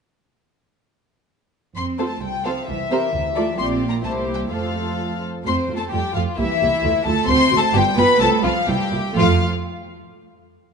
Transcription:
1.76 double bass section F2, cello section C4, violin section C6
1.99 viola section C4 F4, violin section A4 C5
2.07 cello section A3, violin section A5
2.22 double bass section C2, cello section G3, violin section G5
2.45 cello section F3, viola section C4 F4, violin section A4 C5 F5
2.68 double bass section C2, cello section E3, violin section E5
2.91 viola section C4 G4, violin section A#4 C5
3.13 double bass section D2
3.35 viola section A3 F4, violin section A4 D5
3.58 double bass section A#1, viola section A#3 F4, cello section C4, violin section G4 D5 C6
3.87 cello section A#3, violin section A#5
4.03 double bass section C2, cello section A3, viola section A#3 E4, violin section G4 C5 A5
4.34 cello section G3, violin section G5
4.49 double bass section F2, cello section F3, viola section A3 F4, violin section A4 C5 F5
5.45 double bass section F2, viola section A3 F4, cello section C4, violin section C5 C6
5.68 double bass section F2, viola section A3 F4
5.76 cello section A3, violin section A4 A5
5.91 double bass section F2, cello section G3, viola section A3 F4, violin section G4 G5
6.14 double bass section F2, cello section F3, viola section A3 F4, violin section F4 F5
6.37 double bass section C2, cello section E3, viola section A#3 G4, violin section E4 E5
6.60 double bass section C2, viola section A#3 G4
6.83 double bass section D2, viola section A3 F4
7.05 double bass section D2, cello section A3, viola section A3 F4, violin section A4 A5
7.28 double bass section D2, viola section A3 F#4, cello section C4, violin section C5 C6
7.52 double bass section D2, viola section A3 F#4
7.57 cello section A3, violin section A4 A5
7.73 double bass section G1, cello section G3, viola section B3 F4, violin section G4 G5
7.96 double bass section G1, cello section B3, viola section B3 F4, violin section B4 B5
8.19 double bass section C2, cello section A3, viola section C4 F4, violin section A4 A5
8.42 double bass section C2, cello section F3, viola section C4 F4, violin section F4 F5
8.65 double bass section C2, cello section G3, viola section A#3 E4, violin section G4 G5
8.91 double bass section C2, viola section A#3 E4
9.16 double bass section F2, cello section F3, viola section A3 F4, violin section F4 F5

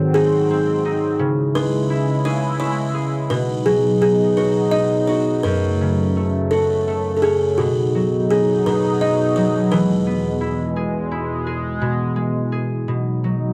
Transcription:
Already playing: analog synth pad G#2 F#3 C4, harp G#2 D#3 C4
0.14 harp D#4, kalimba G#4
0.51 harp C4
0.85 harp D#4
1.19 harp C#3, analog synth pad C#3 G#3 E4
1.55 harp G#3, kalimba B4
1.90 harp E4
2.25 harp G#4, kalimba C#5
2.60 harp E4, kalimba C#5
2.94 harp G#4
3.30 harp B2, analog synth pad B2 F#3 D#4, kalimba B4
3.65 harp F#3, kalimba G#4
4.01 harp D#4, kalimba G#4
4.37 harp F#4, kalimba B4
4.71 harp D#4, kalimba D#5
5.08 harp F#4, kalimba C#5
5.43 harp F#2, analog synth pad F#2 C#3 A3, kalimba B4
5.81 harp C#3
6.16 harp A3
6.51 harp F#4, kalimba A4
6.88 harp A3
7.17 kalimba A4
7.22 harp C#4, kalimba G#4
7.58 harp B2, analog synth pad B2 F#3 D#4, kalimba F#4
7.95 harp F#3
8.30 harp D#4, kalimba G#4
8.66 harp B2, kalimba B4
9.01 harp D#4, kalimba D#5
9.36 harp F#3, kalimba C#5
9.71 analog synth pad E2 G#3, harp E3, kalimba B4
10.06 harp B3
10.41 harp E4
10.76 harp G#4
11.11 harp E4
11.47 harp G#4
11.82 harp B2, analog synth pad E3
12.16 harp G#3
12.52 harp G#4
12.88 harp B2, analog synth pad F#3 D#4
13.24 harp F#3

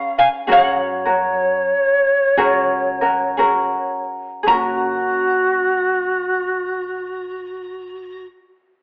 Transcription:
Already playing: ukulele C#4 G#4 B4, shakuhachi F5, resonator guitar played with a steel bar F#5 A#5
0.17 shakuhachi F5, resonator guitar played with a steel bar F5 G#5
0.47 upright bass F#2, ukulele C#4 F#4 G#4 A#4
0.51 shakuhachi C#5, resonator guitar played with a steel bar C#5 F#5
1.05 ukulele C#4 F#4 A#4
2.37 upright bass C#2, ukulele C#4 F#4 G#4 A#4
3.01 ukulele C#4 F#4 A#4
3.37 ukulele C#4 F#4 G#4 A#4
4.43 upright bass F#1, ukulele C#4 G#4, shakuhachi F4
4.48 ukulele F#4 A#4, resonator guitar played with a steel bar A#5
4.58 shakuhachi F#4

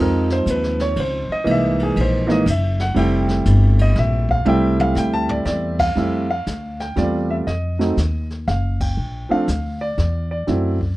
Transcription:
Already playing: upright bass F2, grand piano F3 G#3 C4 D#4
0.01 grand piano A#4
0.30 grand piano C5, snare
0.46 upright bass D#2, kick, hi-hat pedal, ride
0.50 grand piano B4
0.63 snare
0.79 grand piano C#5, snare, ride
0.96 upright bass C#2, grand piano C5, kick, ride
1.29 grand piano D#5, muted upright bass stroke
1.44 upright bass C2, grand piano E3 G#3 A#3 D#4, kick, ride
1.51 grand piano E5
1.79 grand piano G#4, ride
1.96 upright bass A#1, kick, ride
2.01 grand piano C5
2.27 grand piano E3 G#3 A#3 D#4, snare
2.32 grand piano D#5
2.46 upright bass F#1, kick, hi-hat pedal, ride
2.50 grand piano E5
2.80 grand piano F#5, snare, ride
2.94 upright bass F1, grand piano G3 A3 C4 E4, kick, ride
2.99 grand piano G5
3.29 snare
3.45 upright bass G1, kick, hi-hat pedal, ride
3.79 grand piano D#5, ride
3.96 upright bass A#1, grand piano E5, kick, snare
4.29 grand piano F5, kick
4.45 upright bass C2, grand piano G3 A3 C4 E4 G5, high tom
4.80 grand piano F5, high tom
4.95 upright bass D2, grand piano G5, snare, hi-hat pedal
5.14 grand piano A5
5.29 grand piano D5, floor tom
5.45 upright bass E2, grand piano D5, snare
5.79 grand piano F5, kick, crash
5.95 upright bass F2, grand piano G3 A3 C4 E4, brush sweep, snare
6.31 grand piano F5
6.46 upright bass D2, kick, snare, hi-hat pedal
6.80 grand piano G5, snare
6.96 upright bass E2, grand piano G3 A3 C4 F4 D5, kick, snare
7.30 grand piano E5
7.47 upright bass F2, grand piano D#5, brush sweep, kick, snare
7.79 grand piano F#3 A3 C4 D#4, snare
7.97 upright bass D#2, kick, snare, hi-hat pedal
8.30 snare
8.48 upright bass F#1, grand piano F5, kick, snare
8.80 grand piano G5, kick, crash
8.97 upright bass A#1, brush sweep
9.29 grand piano F3 A3 C4 D4 F5, muted upright bass stroke
9.48 upright bass D2, kick, snare, hi-hat pedal
9.81 grand piano D5
9.98 upright bass E2, kick, snare
10.31 grand piano D5
10.47 upright bass F#2, grand piano F#3 A3 C4 E4, brush sweep, kick, snare
10.81 kick

